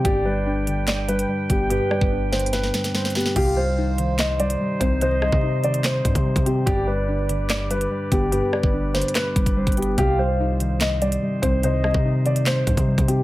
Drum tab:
CC |------------------------------------------------------------------------------------------------|------------------------------------------------------------------------------------------------|x-----------------------------------------------------------------------------------------------|------------------------------------------------------------------------------------------------|
HH |x-----------------------------------x-----------x-----------x-----x-----------------x-----------|x-----------------------------------x---x---x---x-----------x-----x-----------x--x--x--x--------|x-----------------------------------x-----------x-----------x-----x-----------------x-----------|x-----------------------------------x-----x-----x-----------x-----x-----------x-----x-----------|
CP |------------------------------------------------x-----------------------------------------------|------------------------------------------------------------------------------------------------|------------------------------------------------x-----------------------------------------------|------------------------------------------------x-----------------------------------------------|
SD |------------------------------------------------o-----------------------------------------------|------------r-----------------------o-----------o-----o-----o-----o-----o-----o-----o-----o-----|------------------------------------------------o-----------------------------------------------|------------r-----------------------------------o-----------------------------------------------|
BD |o-----------------------------------------------------------------------------------o-----------|------------------o-----------------------------------------------------------------------------|o-----------------------------------------------------------------------------------o-----------|------------------o-----------------------------------------o-----o-----------o-----------------|

CC |------------------------------------------------------------------------------------------------|------------------------------------------------------------------------------------------------|------------------------------------------------------------------------------------------------|------------------------------------------------------------------------------------------------|
HH |x-----------------------------------x-----------x-----------x-----x-----------------x-----------|x-----------------------------------x---x---x---x-----------x-----x-----------x--x--x--x--------|x-----------------------------------x-----------x-----------x-----x-----------------x-----------|x-----------------------------------x-----x-----x-----------x-----x-----------x-----x-----------|
CP |------------------------------------------------x-----------------------------------------------|------------------------------------------------x-----------------------------------------------|------------------------------------------------x-----------------------------------------------|------------------------------------------------x-----------------------------------------------|
SD |------------------------------------------------o-----------------------------------------------|------------r-----------------------o-----------o-----------------------------------------------|------------------------------------------------o-----------------------------------------------|------------r-----------------------------------o-----------------------------------------------|
BD |o-----------------------------------------------------------------------------------o-----------|------------------o-----------------------------------------o-----o-----------o-----------------|o-----------------------------------------------------------------------------------o-----------|------------------o-----------------------------------------o-----o-----------o-----------------|